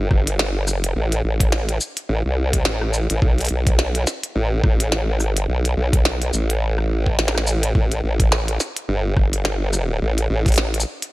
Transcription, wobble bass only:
0.11 0.70 G1 loud
0.70 0.94 F#1 loud
0.96 1.22 A1 loud
1.24 1.79 A1 loud
2.09 2.23 A1 loud
2.25 2.64 C2 medium
2.66 3.08 A1 loud
3.10 3.20 A1 loud
3.22 3.49 B1 loud
3.50 4.05 B1 medium
4.35 4.62 A1 loud
4.64 5.23 A1 loud
5.23 5.47 G#1 loud
5.48 5.75 B1 loud
5.77 6.32 B1 loud
6.33 7.16 A1 loud
7.19 7.73 A1 loud
7.75 8.01 A1 medium
8.04 8.58 A1 medium
8.88 9.15 G1 loud
9.17 10.00 G1 medium
10.02 10.28 A1 loud
10.30 10.84 A1 loud

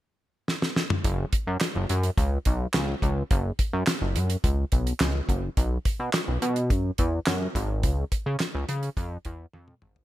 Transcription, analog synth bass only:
1.04 1.25 F#1 loud
1.47 1.57 F#2 medium
1.75 1.86 F#1 medium
1.90 2.10 F#2 medium
2.18 2.38 C#2 medium
2.46 2.67 B1 medium
2.74 2.95 C#2 medium
3.02 3.23 C#2 medium
3.31 3.52 F#1 loud
3.73 3.84 F#2 loud
4.02 4.17 F#1 medium
4.16 4.37 F#2 medium
4.44 4.65 C#2 medium
4.73 4.93 B1 medium
5.01 5.21 C#2 medium
5.29 5.50 F#1 medium
5.57 5.78 B1 loud
6.00 6.10 B2 loud
6.28 6.38 B1 medium
6.42 6.72 B2 loud
6.70 6.91 F#2 medium
6.99 7.20 E2 loud
7.27 7.48 F#2 medium
7.55 7.85 G#1 loud
7.84 8.04 C#2 loud
8.26 8.37 C#3 medium
8.55 8.65 C#2 loud
8.69 8.89 C#3 medium
8.97 9.18 F2 loud
9.25 9.46 E2 loud
9.54 9.74 F2 medium
9.82 10.03 G#1 medium

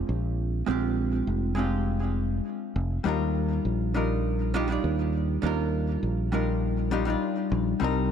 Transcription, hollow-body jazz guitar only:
0.00 0.64 G#3 medium
0.00 0.64 C4 medium
0.00 0.65 D4 medium
0.00 0.66 F4 medium
0.00 0.66 G4 medium
0.66 1.53 G#3 medium
0.66 1.54 C4 medium
0.66 1.54 D4 medium
0.66 1.55 F4 medium
0.71 1.55 G4 medium
1.55 3.01 G#3 medium
1.55 3.02 C4 medium
1.55 3.02 D4 medium
1.55 3.03 F4 medium
1.59 3.03 G4 medium
3.04 3.91 G3 medium
3.04 3.91 D4 medium
3.04 3.92 D#4 medium
3.04 3.92 F4 medium
3.08 3.93 A#4 medium
3.94 4.51 G3 medium
3.94 4.52 D4 medium
3.94 4.52 D#4 medium
3.94 4.52 F4 medium
3.94 4.52 A#4 medium
4.54 4.66 G3 medium
4.54 4.66 D4 medium
4.54 4.66 D#4 medium
4.54 4.67 F4 medium
4.54 4.67 G4 loud
4.68 5.39 G3 medium
4.68 5.40 D4 medium
4.68 5.40 D#4 medium
4.68 5.41 F4 medium
4.72 5.41 D5 medium
5.42 6.28 G3 medium
5.42 6.29 D4 medium
5.42 6.30 D#4 medium
5.42 6.30 F4 medium
5.46 6.31 A#4 medium
6.32 6.89 G3 medium
6.32 6.89 D4 medium
6.32 6.89 D#4 medium
6.32 6.90 F4 medium
6.32 6.90 A#4 medium
6.91 7.03 G3 loud
6.91 7.04 D4 medium
6.91 7.04 D#4 medium
6.91 7.04 F4 medium
6.91 7.04 G4 medium
7.05 7.77 G3 medium
7.05 7.77 D4 medium
7.05 7.78 D#4 medium
7.05 7.78 F4 medium
7.10 7.79 D5 medium
7.80 8.12 G3 medium
7.80 8.12 C4 medium
7.80 8.12 D4 medium
7.80 8.12 D#4 medium
7.84 8.12 A#4 loud

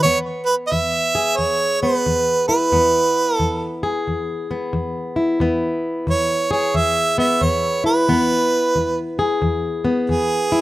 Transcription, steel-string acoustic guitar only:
0.04 0.66 E2 medium
0.04 1.82 B3 medium
0.72 1.34 E2 medium
1.15 3.83 G#4 medium
1.39 2.01 E2 medium
1.83 2.72 B3 soft
2.06 2.68 E2 medium
2.49 5.16 E4 medium
2.72 3.35 E2 medium
2.72 4.50 B3 medium
3.40 4.02 E2 medium
3.83 6.50 G#4 medium
4.07 4.69 E2 medium
4.51 5.41 B3 medium
4.73 5.36 E2 medium
5.16 7.84 E4 soft
5.40 6.03 E2 medium
5.40 7.17 B3 medium
6.07 6.70 E2 medium
6.51 8.06 G#4 medium
6.74 7.37 E2 medium
7.18 8.06 B3 medium
7.41 8.04 E2 medium
7.84 10.52 E4 soft
8.08 8.71 E2 medium
8.08 9.83 B3 medium
8.75 9.38 E2 medium
9.19 10.61 G#4 medium
9.42 10.04 E2 medium
9.85 10.61 B3 medium
10.09 10.61 E2 medium
10.52 10.61 E4 soft

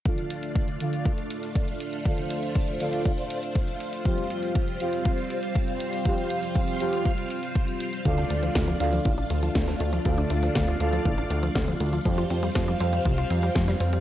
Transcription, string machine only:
0.05 4.01 A3 medium
0.05 4.01 D4 medium
0.05 12.01 F4 medium
0.05 2.03 D5 medium
0.05 12.01 F5 medium
2.06 8.02 C5 medium
4.05 8.01 G3 medium
4.05 8.01 C4 medium
8.05 12.01 A3 medium
8.05 12.01 D4 medium
8.05 12.01 D5 medium
12.06 14.00 G3 medium
12.06 14.00 C4 medium
12.06 14.00 F4 medium
12.06 14.00 C5 medium
12.06 14.00 F5 medium

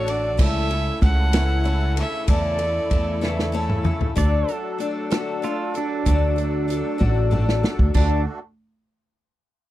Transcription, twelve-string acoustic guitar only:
0.07 0.39 D4 soft
0.07 0.39 F#4 soft
0.07 0.38 A4 medium
0.37 0.70 C#3 medium
0.37 0.70 E3 medium
0.37 0.70 A3 medium
0.37 0.70 C#4 medium
0.37 0.70 E4 medium
0.37 0.68 A4 medium
0.70 1.00 A3 soft
0.70 1.01 C#4 soft
0.70 1.02 E4 medium
0.70 1.02 A4 medium
1.01 1.33 A3 medium
1.01 1.33 C#4 medium
1.01 1.33 E4 medium
1.01 1.32 A4 medium
1.33 1.66 C#3 medium
1.33 1.66 E3 medium
1.33 1.63 A3 medium
1.33 1.64 C#4 medium
1.33 1.65 E4 medium
1.33 1.65 A4 medium
1.64 1.96 A3 medium
1.64 1.97 C#4 medium
1.64 1.96 E4 medium
1.64 1.95 A4 medium
1.96 2.28 A3 soft
1.96 2.29 C#4 medium
1.96 2.28 E4 medium
1.96 2.28 A4 medium
2.27 2.59 C#3 medium
2.27 2.60 E3 medium
2.27 2.60 A3 medium
2.27 2.58 E4 medium
2.27 2.57 A4 medium
2.58 2.89 A3 soft
2.58 2.91 E4 medium
2.58 2.90 A4 medium
2.90 3.22 A3 medium
2.90 3.21 E4 medium
2.90 3.20 A4 medium
3.21 3.55 C#3 medium
3.21 3.55 E3 medium
3.21 3.51 A3 medium
3.21 3.53 E4 medium
3.21 3.53 A4 medium
3.52 3.85 A3 medium
3.52 3.85 C#4 medium
3.52 3.83 E4 medium
3.52 3.83 A4 medium
3.84 4.14 A3 soft
3.84 4.15 C#4 medium
3.84 4.16 E4 medium
3.84 4.15 A4 medium
4.16 4.48 D3 medium
4.16 4.48 A3 medium
4.16 4.48 D4 medium
4.16 4.48 F#4 loud
4.16 4.47 A4 loud
4.48 4.79 D4 soft
4.48 4.79 F#4 medium
4.48 4.80 A4 medium
4.78 5.11 A3 medium
4.78 5.11 D4 medium
4.78 5.11 F#4 medium
4.78 5.09 A4 medium
5.11 5.44 D3 medium
5.11 5.41 A3 medium
5.11 5.42 D4 medium
5.11 5.43 F#4 medium
5.11 5.43 A4 medium
5.42 5.74 A3 medium
5.42 5.75 D4 medium
5.42 5.73 A4 medium
5.74 6.06 D4 soft
5.74 6.06 F#4 medium
5.74 6.06 A4 medium
6.05 6.37 D3 medium
6.05 6.38 A3 medium
6.05 6.38 D4 medium
6.05 6.36 F#4 medium
6.05 6.35 A4 medium
6.36 6.67 D4 soft
6.36 6.68 F#4 medium
6.36 6.68 A4 medium
6.68 6.99 A3 medium
6.68 6.99 D4 medium
6.68 6.98 F#4 medium
6.68 6.97 A4 medium
6.98 7.32 D3 medium
6.98 7.30 A3 medium
6.98 7.30 D4 medium
6.98 7.31 F#4 medium
6.98 7.31 A4 medium
7.31 7.63 A3 medium
7.31 7.63 D4 medium
7.31 7.64 F#4 medium
7.31 7.62 A4 medium
7.63 7.95 D4 medium
7.63 7.96 F#4 medium
7.63 7.95 A4 medium
7.94 8.20 D3 medium
7.94 8.21 A3 medium
7.94 8.21 D4 medium
7.94 8.21 F#4 medium
7.94 8.21 A4 loud

